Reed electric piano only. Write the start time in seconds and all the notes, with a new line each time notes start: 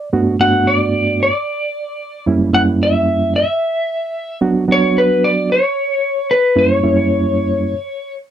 0.13 G2 A3 B3 D4 F#4
0.40 G2 A3 B3 D4 F#4
2.26 F#2 G3 A#3 C#4 E4
2.53 F#2 G3 A#3 C#4 E4
4.41 F#3 B3 D4 F#4
4.68 F#3 B3 D4 F#4
6.56 F#2 G3 A#3 C#4 E4
6.83 F#2 G3 A#3 C#4 E4